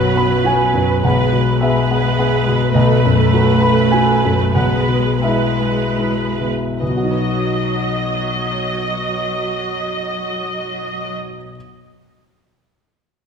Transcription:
Already playing: B1 F#2 F#3 B3 F#4 B4 D#5
0.16 B3 B5
0.44 B3 F#4 B4 G#5
0.73 F#2
1.04 B1 G#3 B4 F#5
1.33 B2
1.61 G#3 B3 G#4 B4 E5
1.91 B3
2.19 B3 G#4 B4
2.48 B2
2.74 B1 A3 B4 D#5
3.05 F#2
3.33 A3 F#4 B4
3.61 A3 B5
3.92 A3 F#4 B4 G#5
4.25 F#2
4.55 B1 G#3 B4 F#5
4.89 B2
5.22 G#3 E4 B4 E5
5.61 G#3
5.99 G#3 E4 B4
6.40 B2
6.80 B1 F#3 B4 D#5
6.89 B2
6.97 F#3
7.03 D#4
7.10 B4
7.18 D#5

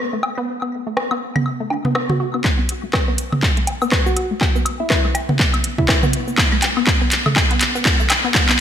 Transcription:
0.13 A3
0.23 high woodblock, low woodblock
0.38 B3
0.62 B3, high woodblock
0.87 A3
0.97 cross-stick, low woodblock
1.11 B3, high woodblock
1.36 B3, mid tom, high woodblock
1.46 high woodblock
1.60 A3
1.70 D4, low woodblock
1.85 B3, mid tom
1.95 B3, cross-stick, high woodblock
2.09 F#4, mid tom
2.20 F#4
2.34 B3, high woodblock
2.44 kick, clap, high woodblock
2.59 B3
2.69 closed hi-hat
2.84 A3
2.93 kick, cross-stick, clap, high woodblock, low woodblock
3.08 B3
3.18 closed hi-hat, shaker
3.32 B3, mid tom, high woodblock
3.43 kick, clap
3.57 A3, closed hi-hat
3.67 closed hi-hat, low woodblock
3.82 B3, high woodblock, shaker
3.92 kick, cross-stick, clap
4.06 B3 F#4, shaker
4.17 F#4, closed hi-hat, high woodblock
4.31 A3
4.41 kick, clap, low woodblock
4.55 B3, shaker
4.66 closed hi-hat, high woodblock
4.80 B3 E4
4.90 E4, kick, cross-stick, clap
5.05 A3, high woodblock
5.15 closed hi-hat, high woodblock, low woodblock, shaker
5.29 B3, mid tom
5.39 kick, clap
5.54 B3, closed hi-hat, high woodblock
5.64 closed hi-hat
5.78 A3 E4, kick, mid tom
5.88 E4, kick, cross-stick, clap, high woodblock, low woodblock
6.03 B3, mid tom, shaker
6.13 closed hi-hat
6.28 B3, shaker
6.38 kick, clap, high woodblock
6.52 A3, high woodblock
6.62 clap, closed hi-hat, low woodblock
6.77 B3, high woodblock
6.87 kick, clap
7.01 B3
7.12 clap, closed hi-hat, shaker
7.26 A3, mid tom, high woodblock
7.36 kick, clap, low woodblock
7.51 B3, closed hi-hat
7.61 clap, closed hi-hat, high woodblock
7.75 B3, shaker
7.85 kick, clap, high woodblock
8.00 A3, shaker
8.10 clap, closed hi-hat, high woodblock, low woodblock
8.24 B3
8.35 kick, clap
8.49 B3, clap, high woodblock, shaker

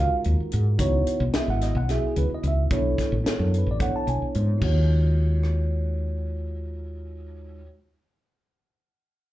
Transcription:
Already playing: G#3 D#4
0.00 F4 F#4 A#4 F5
0.24 D#2, closed hi-hat
0.40 muted fretless electric bass stroke
0.52 G#2, closed hi-hat
0.78 C#2 B3 D#4 E4 F#4 C#5, kick, closed hi-hat
1.06 muted fretless electric bass stroke, closed hi-hat
1.20 B1
1.33 B3 E4 F#4 D#5 E5, snare, closed hi-hat
1.48 G#1 F#5
1.61 D#5, snare, closed hi-hat
1.75 B1 F#5
1.88 B3 D#4 E4 F#4 G#4 E5, snare, closed hi-hat
2.07 G#4
2.16 C#2 B4, closed hi-hat
2.30 muted fretless electric bass stroke
2.34 D#5
2.43 C#2, closed hi-hat
2.48 E5
2.71 B1 B3 D4 E4 A4 C#5, kick, closed hi-hat
2.98 kick, snare, closed hi-hat
3.12 A1
3.24 B3 D4 E4 A4 C#5, muted fretless electric bass stroke, snare, closed hi-hat
3.39 F#2 A#4
3.54 closed hi-hat
3.58 B4
3.66 A1
3.71 D5
3.78 B3 D4 E4 A4 C#5 F#5, kick, closed hi-hat
3.96 A5
4.07 B1 G#5, closed hi-hat
4.22 muted fretless electric bass stroke
4.35 G#2, closed hi-hat
4.56 G#3 D#4 F4
4.62 D#2 F#4 C#5, kick, crash
5.43 cross-stick

